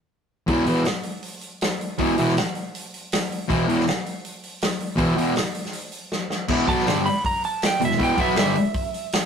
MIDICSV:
0, 0, Header, 1, 4, 480
1, 0, Start_track
1, 0, Key_signature, 1, "minor"
1, 0, Tempo, 374766
1, 633, Time_signature, 4, 2, 24, 8
1, 11854, End_track
2, 0, Start_track
2, 0, Title_t, "Electric slide guitar"
2, 0, Program_c, 0, 29
2, 8565, Note_on_c, 0, 81, 107
2, 9025, Note_off_c, 0, 81, 0
2, 9037, Note_on_c, 0, 83, 86
2, 9268, Note_off_c, 0, 83, 0
2, 9296, Note_on_c, 0, 82, 87
2, 9517, Note_off_c, 0, 82, 0
2, 9541, Note_on_c, 0, 81, 77
2, 9760, Note_off_c, 0, 81, 0
2, 9815, Note_on_c, 0, 79, 82
2, 10017, Note_off_c, 0, 79, 0
2, 10055, Note_on_c, 0, 76, 79
2, 10257, Note_off_c, 0, 76, 0
2, 10287, Note_on_c, 0, 79, 79
2, 10493, Note_off_c, 0, 79, 0
2, 10517, Note_on_c, 0, 76, 88
2, 10720, Note_off_c, 0, 76, 0
2, 10736, Note_on_c, 0, 76, 90
2, 11854, Note_off_c, 0, 76, 0
2, 11854, End_track
3, 0, Start_track
3, 0, Title_t, "Distorted electric guitar"
3, 0, Program_c, 1, 30
3, 600, Note_on_c, 1, 40, 86
3, 615, Note_on_c, 1, 47, 90
3, 627, Note_on_c, 1, 52, 99
3, 808, Note_off_c, 1, 40, 0
3, 816, Note_off_c, 1, 47, 0
3, 822, Note_off_c, 1, 52, 0
3, 843, Note_on_c, 1, 40, 100
3, 858, Note_on_c, 1, 47, 105
3, 869, Note_on_c, 1, 52, 101
3, 1050, Note_off_c, 1, 40, 0
3, 1057, Note_off_c, 1, 47, 0
3, 1063, Note_off_c, 1, 52, 0
3, 2541, Note_on_c, 1, 40, 96
3, 2551, Note_on_c, 1, 47, 96
3, 2560, Note_on_c, 1, 52, 92
3, 2740, Note_off_c, 1, 40, 0
3, 2744, Note_off_c, 1, 47, 0
3, 2749, Note_off_c, 1, 52, 0
3, 2788, Note_on_c, 1, 40, 102
3, 2795, Note_on_c, 1, 47, 114
3, 2810, Note_on_c, 1, 52, 95
3, 2983, Note_off_c, 1, 40, 0
3, 2987, Note_off_c, 1, 47, 0
3, 2994, Note_off_c, 1, 52, 0
3, 4458, Note_on_c, 1, 40, 89
3, 4465, Note_on_c, 1, 47, 93
3, 4479, Note_on_c, 1, 52, 100
3, 4658, Note_off_c, 1, 40, 0
3, 4662, Note_off_c, 1, 47, 0
3, 4668, Note_off_c, 1, 52, 0
3, 4703, Note_on_c, 1, 40, 88
3, 4713, Note_on_c, 1, 47, 103
3, 4719, Note_on_c, 1, 52, 109
3, 4900, Note_off_c, 1, 40, 0
3, 4905, Note_off_c, 1, 47, 0
3, 4909, Note_off_c, 1, 52, 0
3, 6352, Note_on_c, 1, 40, 90
3, 6374, Note_on_c, 1, 47, 77
3, 6381, Note_on_c, 1, 52, 100
3, 6565, Note_off_c, 1, 40, 0
3, 6576, Note_off_c, 1, 47, 0
3, 6579, Note_off_c, 1, 52, 0
3, 6609, Note_on_c, 1, 40, 91
3, 6625, Note_on_c, 1, 47, 102
3, 6628, Note_on_c, 1, 52, 95
3, 6814, Note_off_c, 1, 40, 0
3, 6822, Note_off_c, 1, 47, 0
3, 6823, Note_off_c, 1, 52, 0
3, 8305, Note_on_c, 1, 40, 101
3, 8320, Note_on_c, 1, 47, 92
3, 8325, Note_on_c, 1, 52, 98
3, 8532, Note_off_c, 1, 47, 0
3, 8542, Note_off_c, 1, 40, 0
3, 8547, Note_on_c, 1, 47, 94
3, 8552, Note_off_c, 1, 52, 0
3, 8562, Note_on_c, 1, 54, 85
3, 8567, Note_on_c, 1, 59, 110
3, 8783, Note_off_c, 1, 47, 0
3, 8790, Note_off_c, 1, 54, 0
3, 8792, Note_on_c, 1, 43, 84
3, 8793, Note_off_c, 1, 59, 0
3, 8799, Note_on_c, 1, 50, 98
3, 8819, Note_on_c, 1, 55, 101
3, 9025, Note_off_c, 1, 43, 0
3, 9029, Note_off_c, 1, 50, 0
3, 9039, Note_off_c, 1, 55, 0
3, 9993, Note_on_c, 1, 40, 70
3, 9999, Note_on_c, 1, 47, 71
3, 10185, Note_off_c, 1, 40, 0
3, 10187, Note_off_c, 1, 47, 0
3, 10224, Note_on_c, 1, 40, 96
3, 10243, Note_on_c, 1, 47, 104
3, 10244, Note_on_c, 1, 52, 110
3, 10430, Note_off_c, 1, 47, 0
3, 10445, Note_on_c, 1, 47, 94
3, 10461, Note_off_c, 1, 40, 0
3, 10463, Note_off_c, 1, 52, 0
3, 10468, Note_on_c, 1, 54, 104
3, 10470, Note_on_c, 1, 59, 112
3, 10691, Note_off_c, 1, 47, 0
3, 10691, Note_on_c, 1, 43, 95
3, 10703, Note_off_c, 1, 54, 0
3, 10703, Note_off_c, 1, 59, 0
3, 10714, Note_on_c, 1, 50, 90
3, 10722, Note_on_c, 1, 55, 102
3, 10934, Note_off_c, 1, 43, 0
3, 10946, Note_off_c, 1, 50, 0
3, 10950, Note_off_c, 1, 55, 0
3, 11854, End_track
4, 0, Start_track
4, 0, Title_t, "Drums"
4, 611, Note_on_c, 9, 46, 60
4, 619, Note_on_c, 9, 36, 104
4, 739, Note_off_c, 9, 46, 0
4, 747, Note_off_c, 9, 36, 0
4, 851, Note_on_c, 9, 46, 60
4, 979, Note_off_c, 9, 46, 0
4, 1089, Note_on_c, 9, 46, 65
4, 1103, Note_on_c, 9, 38, 97
4, 1217, Note_off_c, 9, 46, 0
4, 1231, Note_off_c, 9, 38, 0
4, 1323, Note_on_c, 9, 46, 52
4, 1451, Note_off_c, 9, 46, 0
4, 1570, Note_on_c, 9, 46, 71
4, 1698, Note_off_c, 9, 46, 0
4, 1808, Note_on_c, 9, 46, 53
4, 1936, Note_off_c, 9, 46, 0
4, 2064, Note_on_c, 9, 46, 78
4, 2078, Note_on_c, 9, 38, 111
4, 2192, Note_off_c, 9, 46, 0
4, 2206, Note_off_c, 9, 38, 0
4, 2317, Note_on_c, 9, 46, 54
4, 2445, Note_off_c, 9, 46, 0
4, 2541, Note_on_c, 9, 46, 76
4, 2553, Note_on_c, 9, 36, 99
4, 2669, Note_off_c, 9, 46, 0
4, 2681, Note_off_c, 9, 36, 0
4, 2789, Note_on_c, 9, 46, 65
4, 2917, Note_off_c, 9, 46, 0
4, 2918, Note_on_c, 9, 38, 32
4, 3033, Note_on_c, 9, 46, 72
4, 3046, Note_off_c, 9, 38, 0
4, 3047, Note_on_c, 9, 38, 118
4, 3161, Note_off_c, 9, 46, 0
4, 3175, Note_off_c, 9, 38, 0
4, 3266, Note_on_c, 9, 46, 50
4, 3394, Note_off_c, 9, 46, 0
4, 3519, Note_on_c, 9, 46, 78
4, 3647, Note_off_c, 9, 46, 0
4, 3763, Note_on_c, 9, 46, 52
4, 3891, Note_off_c, 9, 46, 0
4, 3997, Note_on_c, 9, 46, 85
4, 4011, Note_on_c, 9, 38, 123
4, 4125, Note_off_c, 9, 46, 0
4, 4139, Note_off_c, 9, 38, 0
4, 4253, Note_on_c, 9, 46, 55
4, 4381, Note_off_c, 9, 46, 0
4, 4483, Note_on_c, 9, 46, 62
4, 4484, Note_on_c, 9, 36, 109
4, 4611, Note_off_c, 9, 46, 0
4, 4612, Note_off_c, 9, 36, 0
4, 4731, Note_on_c, 9, 46, 58
4, 4859, Note_off_c, 9, 46, 0
4, 4866, Note_on_c, 9, 38, 35
4, 4963, Note_on_c, 9, 46, 66
4, 4977, Note_off_c, 9, 38, 0
4, 4977, Note_on_c, 9, 38, 105
4, 5091, Note_off_c, 9, 46, 0
4, 5105, Note_off_c, 9, 38, 0
4, 5204, Note_on_c, 9, 46, 49
4, 5332, Note_off_c, 9, 46, 0
4, 5439, Note_on_c, 9, 46, 68
4, 5567, Note_off_c, 9, 46, 0
4, 5680, Note_on_c, 9, 46, 50
4, 5808, Note_off_c, 9, 46, 0
4, 5912, Note_on_c, 9, 46, 77
4, 5926, Note_on_c, 9, 38, 115
4, 6040, Note_off_c, 9, 46, 0
4, 6054, Note_off_c, 9, 38, 0
4, 6152, Note_on_c, 9, 46, 55
4, 6280, Note_off_c, 9, 46, 0
4, 6378, Note_on_c, 9, 46, 70
4, 6386, Note_on_c, 9, 36, 95
4, 6506, Note_off_c, 9, 46, 0
4, 6514, Note_off_c, 9, 36, 0
4, 6635, Note_on_c, 9, 46, 61
4, 6764, Note_off_c, 9, 46, 0
4, 6862, Note_on_c, 9, 46, 73
4, 6876, Note_on_c, 9, 38, 104
4, 6990, Note_off_c, 9, 46, 0
4, 7004, Note_off_c, 9, 38, 0
4, 7102, Note_on_c, 9, 46, 58
4, 7230, Note_off_c, 9, 46, 0
4, 7240, Note_on_c, 9, 38, 34
4, 7338, Note_on_c, 9, 46, 69
4, 7368, Note_off_c, 9, 38, 0
4, 7466, Note_off_c, 9, 46, 0
4, 7579, Note_on_c, 9, 46, 53
4, 7707, Note_off_c, 9, 46, 0
4, 7836, Note_on_c, 9, 38, 67
4, 7964, Note_off_c, 9, 38, 0
4, 8075, Note_on_c, 9, 38, 73
4, 8203, Note_off_c, 9, 38, 0
4, 8304, Note_on_c, 9, 49, 113
4, 8312, Note_on_c, 9, 36, 109
4, 8432, Note_off_c, 9, 49, 0
4, 8440, Note_off_c, 9, 36, 0
4, 8559, Note_on_c, 9, 36, 122
4, 8566, Note_on_c, 9, 46, 63
4, 8687, Note_off_c, 9, 36, 0
4, 8694, Note_off_c, 9, 46, 0
4, 8698, Note_on_c, 9, 38, 35
4, 8797, Note_on_c, 9, 46, 72
4, 8811, Note_off_c, 9, 38, 0
4, 8811, Note_on_c, 9, 38, 109
4, 8925, Note_off_c, 9, 46, 0
4, 8939, Note_off_c, 9, 38, 0
4, 9039, Note_on_c, 9, 46, 58
4, 9167, Note_off_c, 9, 46, 0
4, 9281, Note_on_c, 9, 36, 99
4, 9281, Note_on_c, 9, 46, 73
4, 9409, Note_off_c, 9, 36, 0
4, 9409, Note_off_c, 9, 46, 0
4, 9526, Note_on_c, 9, 46, 51
4, 9654, Note_off_c, 9, 46, 0
4, 9761, Note_on_c, 9, 46, 82
4, 9775, Note_on_c, 9, 38, 123
4, 9889, Note_off_c, 9, 46, 0
4, 9903, Note_off_c, 9, 38, 0
4, 10008, Note_on_c, 9, 46, 60
4, 10129, Note_on_c, 9, 38, 31
4, 10136, Note_off_c, 9, 46, 0
4, 10241, Note_on_c, 9, 36, 94
4, 10243, Note_on_c, 9, 46, 78
4, 10257, Note_off_c, 9, 38, 0
4, 10369, Note_off_c, 9, 36, 0
4, 10371, Note_off_c, 9, 46, 0
4, 10472, Note_on_c, 9, 46, 72
4, 10480, Note_on_c, 9, 36, 113
4, 10600, Note_off_c, 9, 46, 0
4, 10608, Note_off_c, 9, 36, 0
4, 10709, Note_on_c, 9, 46, 87
4, 10723, Note_on_c, 9, 38, 117
4, 10837, Note_off_c, 9, 46, 0
4, 10852, Note_off_c, 9, 38, 0
4, 10957, Note_on_c, 9, 46, 61
4, 11085, Note_off_c, 9, 46, 0
4, 11196, Note_on_c, 9, 46, 75
4, 11201, Note_on_c, 9, 36, 102
4, 11324, Note_off_c, 9, 46, 0
4, 11329, Note_off_c, 9, 36, 0
4, 11452, Note_on_c, 9, 46, 59
4, 11580, Note_off_c, 9, 46, 0
4, 11687, Note_on_c, 9, 46, 86
4, 11701, Note_on_c, 9, 38, 119
4, 11815, Note_off_c, 9, 46, 0
4, 11829, Note_off_c, 9, 38, 0
4, 11854, End_track
0, 0, End_of_file